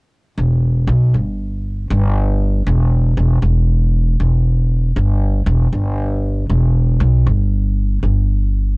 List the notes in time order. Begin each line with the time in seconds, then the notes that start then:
0.38 E1
0.87 B1
1.14 G1
1.90 G1
2.67 E1
3.17 E1
3.42 E1
4.20 E1
4.96 G1
5.46 E1
5.73 G1
6.50 E1
7.00 B1
7.26 G1
8.03 G1